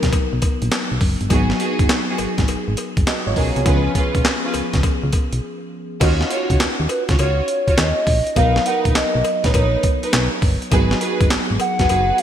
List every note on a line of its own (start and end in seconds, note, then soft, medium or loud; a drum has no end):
0.00 0.11 B1 medium
0.00 1.26 F#3 medium
0.00 1.27 B3 medium
0.00 1.27 D#4 medium
0.00 1.27 A#4 medium
0.00 kick medium
0.00 snare medium
0.00 closed hi-hat medium
0.13 0.21 B1 soft
0.13 kick medium
0.13 closed hi-hat medium
0.13 cowbell medium
0.33 0.40 B1 medium
0.42 kick medium
0.42 closed hi-hat medium
0.42 cowbell medium
0.62 0.70 A#1 medium
0.62 closed hi-hat medium
0.71 snare loud
0.71 clap medium
0.71 closed hi-hat medium
0.71 cowbell medium
0.92 0.99 B1 medium
1.01 1.16 F#1 loud
1.01 kick medium
1.01 open hi-hat medium
1.21 1.28 G1 medium
1.21 closed hi-hat soft
1.30 1.53 G#1 loud
1.30 3.32 F#3 medium
1.30 1.54 B3 loud
1.30 2.75 B3 medium
1.30 2.75 D#4 medium
1.30 1.54 F#4 medium
1.30 1.54 G#4 loud
1.30 2.75 G#4 medium
1.30 kick loud
1.30 closed hi-hat medium
1.30 cowbell medium
1.50 snare medium
1.60 1.83 B3 medium
1.60 1.83 F#4 medium
1.60 1.83 G#4 medium
1.60 closed hi-hat medium
1.79 1.87 F#1 medium
1.79 kick medium
1.79 closed hi-hat soft
1.89 snare loud
1.89 clap medium
1.89 closed hi-hat medium
1.89 cowbell medium
2.09 2.26 B3 medium
2.09 2.26 F#4 medium
2.09 2.26 G#4 medium
2.18 2.27 G#1 soft
2.18 closed hi-hat medium
2.18 cowbell medium
2.38 2.46 G#1 medium
2.38 kick medium
2.38 snare medium
2.38 closed hi-hat soft
2.48 2.56 G#1 soft
2.48 closed hi-hat medium
2.48 cowbell medium
2.68 2.76 G#1 medium
2.77 closed hi-hat medium
2.77 cowbell medium
2.97 3.05 F#1 medium
2.97 kick medium
2.97 closed hi-hat medium
3.07 3.26 F#4 medium
3.07 3.26 D#5 medium
3.07 snare loud
3.07 clap medium
3.07 closed hi-hat medium
3.07 cowbell medium
3.27 3.34 G#1 medium
3.27 3.37 F4 medium
3.27 3.36 C#5 medium
3.36 3.52 B1 medium
3.36 3.59 B3 medium
3.36 3.56 C#4 medium
3.36 3.60 F#4 medium
3.36 3.60 G#4 medium
3.36 3.55 A#4 medium
3.36 kick medium
3.36 open hi-hat medium
3.56 3.64 C2 medium
3.56 3.65 B3 medium
3.56 3.67 G#4 medium
3.56 closed hi-hat soft
3.65 3.89 C#2 loud
3.65 3.74 E3 medium
3.65 5.97 B3 medium
3.65 3.89 C#4 medium
3.65 5.98 C#4 medium
3.65 3.89 F4 medium
3.65 5.98 G#4 medium
3.65 3.89 B4 loud
3.65 kick loud
3.65 closed hi-hat medium
3.65 cowbell medium
3.72 6.00 F3 medium
3.95 4.18 C#4 medium
3.95 4.18 F4 medium
3.95 4.19 B4 medium
3.95 kick medium
3.95 closed hi-hat medium
4.15 4.23 B1 medium
4.15 kick medium
4.15 closed hi-hat soft
4.25 snare loud
4.25 clap loud
4.25 closed hi-hat medium
4.25 cowbell medium
4.44 4.61 C#4 medium
4.44 4.61 F4 medium
4.44 4.61 B4 medium
4.54 4.62 C#2 soft
4.54 closed hi-hat medium
4.54 cowbell medium
4.73 4.81 C#2 medium
4.73 kick medium
4.73 snare medium
4.73 closed hi-hat soft
4.83 kick medium
4.83 closed hi-hat medium
4.83 cowbell medium
5.04 5.11 C#2 loud
5.13 kick loud
5.13 closed hi-hat medium
5.13 cowbell medium
5.33 5.40 B1 medium
5.33 closed hi-hat medium
6.00 6.24 D#2 loud
6.00 8.32 C#4 medium
6.00 8.33 D#4 medium
6.00 8.32 F4 medium
6.00 6.24 F4 medium
6.00 6.24 F#4 medium
6.00 8.33 F#4 medium
6.00 6.24 C#5 medium
6.00 kick loud
6.00 closed hi-hat medium
6.00 crash medium
6.00 cowbell medium
6.21 snare medium
6.30 6.54 F4 medium
6.30 6.54 F#4 medium
6.30 6.54 C#5 medium
6.30 closed hi-hat medium
6.50 6.58 C#2 medium
6.50 kick medium
6.50 closed hi-hat soft
6.60 snare loud
6.60 clap medium
6.60 closed hi-hat medium
6.60 cowbell medium
6.80 6.87 D#2 loud
6.89 7.03 B4 medium
6.89 closed hi-hat medium
6.89 cowbell medium
7.09 7.17 C#2 medium
7.09 7.17 F4 medium
7.09 7.18 F#4 medium
7.09 7.18 C#5 medium
7.09 kick medium
7.09 snare medium
7.09 closed hi-hat medium
7.18 7.42 C#2 medium
7.18 7.42 F4 medium
7.18 7.42 F#4 medium
7.18 7.42 C#5 medium
7.18 7.80 C#5 medium
7.18 closed hi-hat medium
7.18 cowbell medium
7.48 closed hi-hat medium
7.68 7.85 F4 medium
7.68 7.85 F#4 medium
7.68 7.85 C#5 medium
7.68 kick medium
7.68 closed hi-hat soft
7.78 7.93 D#2 medium
7.78 8.39 D#5 loud
7.78 snare loud
7.78 clap medium
7.78 closed hi-hat medium
7.78 cowbell medium
8.07 8.22 A#1 medium
8.07 kick medium
8.07 open hi-hat medium
8.27 closed hi-hat soft
8.36 8.59 B1 loud
8.36 10.67 F#3 medium
8.36 10.68 B3 medium
8.36 8.59 D#4 medium
8.36 10.68 D#4 medium
8.36 8.60 A#4 medium
8.36 10.69 A#4 medium
8.36 8.60 B4 medium
8.36 8.66 F5 loud
8.36 kick loud
8.36 closed hi-hat medium
8.36 cowbell medium
8.56 snare medium
8.66 8.89 D#4 medium
8.66 8.89 A#4 medium
8.66 8.89 B4 medium
8.66 8.80 F#5 loud
8.66 closed hi-hat medium
8.85 8.93 A#1 medium
8.85 kick medium
8.85 closed hi-hat soft
8.95 9.04 B1 medium
8.95 9.36 D#5 loud
8.95 snare loud
8.95 clap medium
8.95 closed hi-hat medium
8.95 cowbell medium
9.15 9.23 B1 loud
9.24 closed hi-hat medium
9.24 cowbell medium
9.36 9.46 D#5 medium
9.44 9.52 A#1 medium
9.44 9.53 D#4 medium
9.44 9.53 A#4 medium
9.44 9.53 B4 medium
9.44 10.03 C#5 medium
9.44 kick medium
9.44 snare medium
9.44 closed hi-hat medium
9.54 9.77 A#1 loud
9.54 9.77 D#4 medium
9.54 9.77 A#4 medium
9.54 9.77 B4 medium
9.54 kick medium
9.54 closed hi-hat medium
9.54 cowbell medium
9.83 kick loud
9.83 closed hi-hat medium
10.03 10.20 D#4 medium
10.03 10.20 A#4 medium
10.03 10.20 B4 medium
10.03 closed hi-hat medium
10.13 10.29 B1 loud
10.13 snare loud
10.13 clap loud
10.13 closed hi-hat medium
10.13 cowbell medium
10.42 10.57 G1 medium
10.42 kick medium
10.42 open hi-hat medium
10.62 closed hi-hat soft
10.71 10.95 G#1 loud
10.71 12.22 F#3 medium
10.71 12.22 B3 medium
10.71 12.22 D#4 medium
10.71 10.95 F#4 loud
10.71 10.95 G#4 medium
10.71 12.22 G#4 medium
10.71 10.95 B4 loud
10.71 kick loud
10.71 closed hi-hat medium
10.71 cowbell medium
10.91 snare medium
11.01 11.24 F#4 medium
11.01 11.24 G#4 medium
11.01 11.24 B4 medium
11.01 closed hi-hat medium
11.21 11.28 F#1 medium
11.21 kick medium
11.21 closed hi-hat soft
11.30 11.39 G#1 medium
11.30 snare loud
11.30 clap loud
11.30 closed hi-hat medium
11.30 cowbell medium
11.51 11.58 G#1 loud
11.60 12.21 F#5 loud
11.60 closed hi-hat medium
11.60 cowbell medium
11.79 11.87 F#1 medium
11.79 11.88 F#4 medium
11.79 11.88 G#4 medium
11.79 11.88 B4 medium
11.79 kick medium
11.79 snare medium
11.79 closed hi-hat soft
11.89 12.12 F#1 medium
11.89 12.12 F#4 medium
11.89 12.13 G#4 medium
11.89 12.13 B4 medium
11.89 closed hi-hat medium
11.89 cowbell medium
12.18 closed hi-hat medium